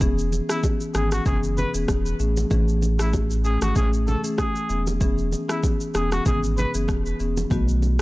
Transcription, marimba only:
0.01 0.23 E3 medium
0.01 0.23 B3 medium
0.01 0.23 C#4 medium
0.01 0.23 G#4 loud
0.49 0.91 E3 medium
0.49 0.91 B3 medium
0.49 0.91 C#4 medium
0.49 0.92 G#4 medium
0.94 1.24 E3 medium
0.94 1.24 B3 medium
0.94 1.24 C#4 medium
0.94 1.24 G#4 medium
1.26 1.48 E3 medium
1.26 1.48 B3 medium
1.26 1.48 C#4 medium
1.26 1.48 G#4 loud
1.74 1.94 E3 medium
1.74 1.94 B3 medium
1.74 1.94 C#4 medium
1.74 1.95 G#4 medium
2.20 2.42 E3 medium
2.20 2.42 A3 medium
2.20 2.42 C#4 medium
2.20 2.42 G#4 medium
2.51 2.73 E3 medium
2.51 2.73 A3 medium
2.51 2.73 C#4 medium
2.51 2.73 G#4 loud
2.99 3.41 E3 medium
2.99 3.41 A3 medium
2.99 3.41 C#4 medium
2.99 3.42 G#4 medium
3.44 3.74 E3 medium
3.44 3.74 A3 medium
3.44 3.74 C#4 medium
3.44 3.74 G#4 medium
3.76 3.98 E3 medium
3.76 3.98 A3 medium
3.76 3.98 C#4 medium
3.76 3.98 G#4 loud
4.24 4.44 E3 medium
4.24 4.44 A3 medium
4.24 4.44 C#4 medium
4.24 4.45 G#4 medium
4.69 4.92 E3 medium
4.69 4.92 B3 medium
4.69 4.92 C#4 medium
4.69 4.92 G#4 medium
5.01 5.23 E3 medium
5.01 5.23 B3 medium
5.01 5.23 C#4 medium
5.01 5.23 G#4 loud
5.49 5.91 E3 medium
5.49 5.91 B3 medium
5.49 5.91 C#4 medium
5.49 5.92 G#4 medium
5.94 6.24 E3 medium
5.94 6.24 B3 medium
5.94 6.24 C#4 medium
5.94 6.24 G#4 medium
6.26 6.48 E3 medium
6.26 6.48 B3 medium
6.26 6.48 C#4 medium
6.26 6.48 G#4 loud
6.74 6.94 E3 medium
6.74 6.94 B3 medium
6.74 6.94 C#4 medium
6.74 6.95 G#4 medium
7.20 7.42 E3 medium
7.20 7.42 B3 medium
7.20 7.42 C#4 medium
7.20 7.42 G#4 medium
7.51 7.73 D#3 medium
7.51 7.73 A3 medium
7.51 7.73 B3 medium
7.51 7.73 F#4 loud

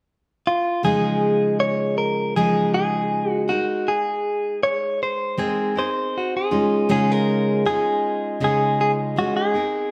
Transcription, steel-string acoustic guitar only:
0.83 2.35 C#3 medium
0.83 2.35 F3 medium
0.83 2.37 G#3 medium
0.83 2.37 D#4 medium
0.83 2.37 G#4 medium
2.36 3.50 C#3 medium
2.36 3.50 F3 medium
2.36 3.51 G#3 medium
2.36 3.50 D#4 medium
2.36 3.48 G#4 medium
3.48 5.37 G#3 soft
3.48 5.39 D#4 soft
3.48 5.38 A#4 medium
5.37 5.76 G#3 medium
5.37 5.76 C4 medium
5.37 5.76 D#4 medium
5.37 5.74 A#4 medium
5.76 6.51 C4 soft
5.76 6.51 D#4 soft
5.76 6.51 A#4 soft
6.51 6.88 C#3 soft
6.51 6.88 G#3 soft
6.51 6.88 C#4 soft
6.51 6.88 D#4 soft
6.51 6.89 F4 medium
6.89 7.65 C#3 medium
6.89 7.65 G#3 medium
6.89 7.65 C#4 medium
6.89 7.67 D#4 medium
6.89 7.66 F4 medium
7.65 8.41 G#3 soft
7.65 8.40 C#4 medium
7.65 8.41 D#4 medium
7.65 8.41 F4 medium
8.40 9.17 C#3 medium
8.40 9.16 G#3 medium
8.40 9.16 C#4 medium
8.40 9.17 D#4 medium
8.40 9.17 F4 medium
9.16 9.55 G#3 soft
9.16 9.55 C#4 soft
9.16 9.54 D#4 medium
9.16 9.53 F4 medium
9.54 9.91 C4 soft
9.54 9.91 D#4 soft
9.54 9.91 A#4 soft

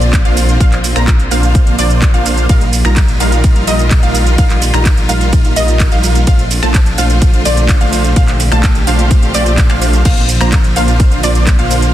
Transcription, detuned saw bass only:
0.00 0.23 A#1 medium
0.25 0.58 A#1 loud
0.60 0.94 A#1 medium
0.96 1.29 A#1 loud
1.31 1.76 A#1 loud
1.79 2.12 A#1 medium
2.14 2.47 A#1 loud
2.49 2.83 A#1 medium
2.85 3.18 A#1 loud
3.20 3.65 A#1 loud
3.68 4.01 A#1 loud
4.03 4.36 A#1 loud
4.38 4.71 A#1 medium
4.74 5.07 A#1 loud
5.09 5.54 A#1 loud
5.56 5.90 A#1 medium
5.92 6.25 A#1 medium
6.27 6.60 A#1 loud
6.63 6.96 A#1 medium
6.98 7.43 A#1 loud
7.45 7.79 A#1 loud
7.81 8.14 A#1 loud
8.16 8.49 A#1 loud
8.52 8.85 A#1 medium
8.87 9.32 A#1 loud
9.35 9.68 A#1 loud
9.70 10.03 A#1 loud
10.05 10.38 A#1 medium
10.41 10.74 A#1 loud
10.76 11.21 A#1 loud
11.24 11.57 A#1 medium
11.59 11.92 A#1 loud

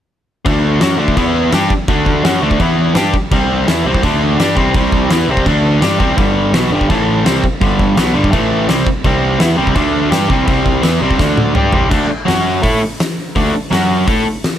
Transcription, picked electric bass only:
0.46 0.79 D2 loud
0.82 0.99 F#2 medium
1.00 1.16 D2 medium
1.17 1.50 E2 medium
1.53 1.70 G2 loud
1.70 muted picked electric bass stroke soft
1.88 2.22 D2 medium
2.24 2.41 F#2 medium
2.42 2.59 D2 medium
2.60 2.93 E2 medium
2.95 3.12 G2 loud
3.14 muted picked electric bass stroke soft
3.31 3.64 C2 loud
3.69 3.85 E2 medium
3.86 4.02 C2 loud
4.03 4.36 D2 medium
4.38 4.55 G2 loud
4.57 4.73 C2 medium
4.75 5.08 C2 loud
5.10 5.27 E2 medium
5.28 5.44 C2 medium
5.46 5.79 D2 medium
5.82 5.99 G2 loud
6.00 6.17 C2 medium
6.18 6.51 G1 medium
6.53 6.70 B1 medium
6.71 6.88 G1 medium
6.90 7.23 A1 medium
7.26 7.42 C2 medium
7.44 muted picked electric bass stroke soft
7.62 7.95 G1 loud
7.98 8.14 B1 medium
8.15 8.32 G1 loud
8.33 8.66 A1 medium
8.70 8.86 C2 loud
8.87 muted picked electric bass stroke soft
9.04 9.37 C2 loud
9.40 9.57 E2 medium
9.58 9.74 C2 medium
9.76 10.09 D2 loud
10.12 10.28 G2 loud
10.30 10.47 C2 medium
10.48 10.81 C2 medium
10.85 11.01 E2 medium
11.02 11.18 C2 medium
11.20 11.53 D2 medium
11.56 11.72 G2 medium
11.73 11.90 C2 medium
11.91 12.08 D2 loud
12.10 muted picked electric bass stroke soft
12.29 12.61 F#2 medium
12.63 12.80 A2 medium
13.36 13.52 D2 medium
13.54 muted picked electric bass stroke soft
13.72 14.05 F#2 medium
14.08 14.24 A2 medium

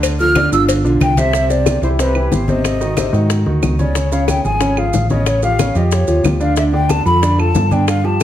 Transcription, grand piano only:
0.00 0.14 D3 medium
0.00 0.14 D4 medium
0.00 0.14 D5 medium
0.20 0.33 F3 medium
0.20 0.33 F4 medium
0.20 0.33 A4 medium
0.36 0.49 D3 medium
0.36 0.50 D4 medium
0.36 0.50 D5 medium
0.52 0.79 D3 medium
0.52 0.79 D4 medium
0.52 0.79 F4 medium
0.84 1.11 D3 medium
0.84 1.11 D4 medium
0.84 1.12 F4 medium
1.18 1.31 C3 medium
1.18 1.31 C4 medium
1.18 1.31 C5 medium
1.34 1.47 C3 medium
1.34 1.47 C4 medium
1.34 1.47 C5 medium
1.50 1.77 C3 medium
1.50 1.77 C4 medium
1.50 1.77 C5 medium
1.83 1.96 E3 medium
1.83 1.96 E4 medium
1.83 1.96 G4 medium
1.99 2.12 C3 medium
1.99 2.12 C4 medium
1.99 2.13 C5 medium
2.16 2.42 E3 medium
2.16 2.43 E4 medium
2.16 2.43 G4 medium
2.48 2.75 C3 medium
2.48 2.75 C4 medium
2.48 2.75 C5 medium
2.81 2.94 D#3 medium
2.81 2.94 D#4 medium
2.81 2.94 F#4 medium
2.97 3.10 C3 medium
2.97 3.10 C4 medium
2.97 3.11 C5 medium
3.13 3.40 D#3 medium
3.13 3.40 D#4 medium
3.13 3.40 F#4 medium
3.46 3.73 D#3 medium
3.46 3.73 D#4 medium
3.46 3.73 F#4 medium
3.79 3.92 C#3 medium
3.79 3.92 C#4 medium
3.79 3.93 C#5 medium
3.96 4.09 C#3 medium
3.96 4.09 C#4 medium
3.96 4.09 C#5 medium
4.12 4.39 C#3 medium
4.12 4.39 C#4 medium
4.12 4.39 C#5 medium
4.45 4.58 F3 medium
4.45 4.58 F4 medium
4.45 4.58 G#4 medium
4.60 4.74 C#3 medium
4.60 4.74 C#4 medium
4.60 4.74 C#5 medium
4.77 5.04 F3 medium
4.77 5.04 F4 medium
4.77 5.04 G#4 medium
5.10 5.37 C#3 medium
5.10 5.37 C#4 medium
5.10 5.37 C#5 medium
5.43 5.56 F3 medium
5.43 5.56 F4 medium
5.43 5.56 G4 medium
5.59 5.72 C#3 medium
5.59 5.72 C#4 medium
5.59 5.72 C#5 medium
5.75 6.02 F3 medium
5.75 6.02 F4 medium
5.75 6.02 G4 medium
6.08 6.34 F3 medium
6.08 6.35 F4 medium
6.08 6.35 G4 medium
6.40 6.54 D3 medium
6.40 6.54 D4 medium
6.40 6.54 D5 medium
6.57 6.70 D3 medium
6.57 6.70 D4 medium
6.57 6.71 D5 medium
6.73 7.00 D3 medium
6.73 7.00 D4 medium
6.73 7.00 D5 medium
7.06 7.19 F3 medium
7.06 7.19 F4 medium
7.06 7.20 A4 medium
7.22 7.36 D3 medium
7.22 7.36 D4 medium
7.22 7.36 D5 medium
7.38 7.65 F3 medium
7.38 7.66 F4 medium
7.38 7.66 A4 medium
7.71 7.98 D3 medium
7.71 7.98 D4 medium
7.71 7.98 D5 medium
8.04 8.17 F3 medium
8.04 8.18 F4 medium
8.04 8.18 G4 medium

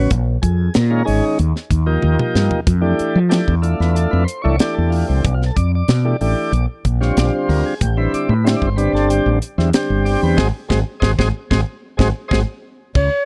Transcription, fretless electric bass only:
0.11 0.36 A#1 loud
0.43 0.68 F2 medium
0.76 1.01 A#2 medium
1.08 1.20 G#1 medium
1.39 1.52 D#2 medium
1.71 1.96 D#2 medium
2.04 2.16 D#2 medium
2.35 2.48 G2 medium
2.67 2.92 F2 loud
3.00 muted fretless electric bass stroke soft
3.15 3.41 F3 medium
3.48 3.73 E2 medium
3.80 4.05 E2 medium
4.13 4.25 F2 medium
4.45 4.57 C2 medium
4.78 5.02 E2 medium
5.09 5.21 C2 medium
5.25 5.50 B1 medium
5.57 5.82 F2 medium
5.88 6.13 B2 medium
6.21 6.33 A1 medium
6.52 6.65 A#1 loud
6.85 7.10 A#1 medium
7.17 7.30 A#1 medium
7.49 7.62 D2 loud
7.82 8.06 A1 loud
8.13 muted fretless electric bass stroke soft
8.29 8.54 A2 loud
8.62 8.87 G1 medium
8.93 9.18 G1 medium
9.26 9.38 A1 loud
9.58 9.70 E2 medium
9.90 10.15 G1 medium
10.23 10.35 E2 medium
10.38 10.50 G#1 loud
10.70 10.82 G#1 medium
11.02 11.14 G#1 medium
11.19 11.30 G#1 loud
11.51 11.63 G#1 medium
11.99 12.11 G#1 loud
12.32 12.43 G#1 medium
12.95 13.08 C#2 medium

